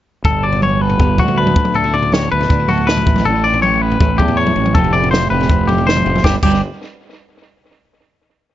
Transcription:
0.25 fingered electric bass G1, clean electric guitar G2 A4, kick, floor tom
0.43 clean electric guitar F#4 D5
0.52 floor tom
0.62 clean electric guitar C#5, mid tom
0.80 clean electric guitar G3 A4 B4
0.90 floor tom
0.99 fingered electric bass G1, clean electric guitar B3, kick, floor tom
1.18 fingered electric bass D2, clean electric guitar F#4, kick, floor tom, mid tom
1.28 floor tom
1.37 clean electric guitar D3 A4 B4
1.47 floor tom, mid tom
1.56 fingered electric bass D2, clean electric guitar D3, kick, floor tom
1.65 mid tom
1.74 clean electric guitar D4 A4, floor tom
1.84 clean electric guitar E4, floor tom
1.94 clean electric guitar D5, floor tom
2.03 floor tom
2.12 clean electric guitar F#3 G4 C#5, snare, mid tom
2.23 clean electric guitar A4
2.32 fingered electric bass D2, clean electric guitar B3 B4
2.41 floor tom
2.49 fingered electric bass D2, clean electric guitar D4, kick, floor tom
2.59 clean electric guitar E4
2.68 clean electric guitar A2 F#4 A4, floor tom, mid tom
2.78 floor tom
2.87 clean electric guitar E4 B4, snare
2.97 floor tom, mid tom
3.06 fingered electric bass A1, clean electric guitar A2, kick, floor tom
3.16 mid tom
3.25 fingered electric bass A1, clean electric guitar D4 A4, floor tom
3.35 clean electric guitar E4
3.44 clean electric guitar D5
3.54 floor tom
3.62 clean electric guitar A3 G4 C#5, mid tom
3.82 clean electric guitar C#4 B4
3.92 floor tom
4.00 fingered electric bass A1, clean electric guitar E4, kick, floor tom
4.18 fingered electric bass E2, clean electric guitar E3 G4 A4, kick, floor tom, mid tom
4.28 floor tom
4.37 clean electric guitar E4 C#5
4.47 floor tom, mid tom
4.56 fingered electric bass A1, clean electric guitar A2, floor tom
4.66 mid tom
4.75 fingered electric bass F1, clean electric guitar F3 A3 C4 E4 G4 A4, kick, floor tom
4.84 floor tom
4.93 clean electric guitar E4 D5, floor tom
5.04 floor tom
5.11 clean electric guitar C5, snare, mid tom
5.30 fingered electric bass F1, clean electric guitar A3 G4 B4
5.40 floor tom
5.50 fingered electric bass F1, clean electric guitar C4, kick, floor tom
5.67 clean electric guitar E4 G4, floor tom, mid tom
5.78 floor tom
5.87 clean electric guitar E3 C5, snare
5.97 floor tom, mid tom
6.05 fingered electric bass F1, clean electric guitar F3, floor tom
6.15 mid tom
6.24 fingered electric bass G1, clean electric guitar G2 G3 D4 F#4 G4 B4, kick, snare
6.43 fingered electric bass G1, clean electric guitar G2 G3 D4 F#4 G4 B4, kick, crash

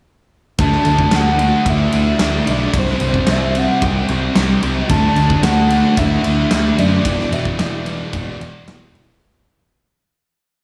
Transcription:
0.58 picked electric bass D2, distorted electric guitar D3 A3 D4, soft synth lead A5, kick, ride
0.72 snare
0.85 picked electric bass D2, distorted electric guitar A3 D4, ride
0.99 kick
1.11 picked electric bass D2, distorted electric guitar D3 A3 D4, soft synth lead F#5, snare, ride
1.38 distorted electric guitar A3 D4, ride
1.65 picked electric bass D2, distorted electric guitar D3 A3 D4, soft synth lead E5, kick, ride
1.92 picked electric bass D2, distorted electric guitar D4, ride
1.97 distorted electric guitar A3
2.19 picked electric bass D2, distorted electric guitar D3 A3 D4, snare, ride
2.46 picked electric bass B1, distorted electric guitar A3 D4, ride
2.50 soft synth lead D5
2.73 picked electric bass C2, distorted electric guitar C3 G3 C4, kick, ride
2.78 soft synth lead C5
2.87 snare
3.00 picked electric bass C2, distorted electric guitar G3 C4, ride
3.14 kick
3.27 picked electric bass C2, distorted electric guitar C3 G3, snare, ride
3.31 distorted electric guitar C4, soft synth lead E5
3.55 distorted electric guitar G3 C4, soft synth lead F#5, ride
3.82 picked electric bass C2, distorted electric guitar C3 G3 C4, soft synth lead G5, kick, ride
4.08 picked electric bass C2, distorted electric guitar G3 C4, ride
4.35 picked electric bass C2, distorted electric guitar C3 G3 C4, snare, ride
4.61 picked electric bass C2, distorted electric guitar G3 C4, ride
4.89 picked electric bass D2, distorted electric guitar D3 A3 D4, soft synth lead A5, kick, ride
5.16 picked electric bass D2, distorted electric guitar A3 D4, ride
5.30 kick
5.42 picked electric bass D2, distorted electric guitar D3 A3 D4, soft synth lead F#5, snare, ride
5.69 distorted electric guitar A3 D4, ride
5.96 picked electric bass D2, distorted electric guitar D3 A3 D4, soft synth lead E5, kick, ride
6.23 picked electric bass D2, distorted electric guitar A3 D4, ride
6.50 picked electric bass D2, distorted electric guitar D3 A3 D4, snare, ride
6.76 picked electric bass F#2, distorted electric guitar A3 D4, soft synth lead D5, ride
7.02 picked electric bass E1, distorted electric guitar E2 B2 E3, kick, ride
7.19 snare
7.31 picked electric bass E1, distorted electric guitar B2 E3, soft synth lead E5, ride
7.45 kick
7.58 picked electric bass E1, distorted electric guitar E2 B2 E3, snare, ride
7.62 soft synth lead D5
7.84 distorted electric guitar B2 E3, ride
8.12 picked electric bass E1, distorted electric guitar E2 B2 E3, kick, ride
8.40 picked electric bass E1, distorted electric guitar B2 E3, ride
8.66 picked electric bass E1, distorted electric guitar E2 B2, snare, ride
8.71 distorted electric guitar E3
8.92 picked electric bass E1, distorted electric guitar B2 E3, ride

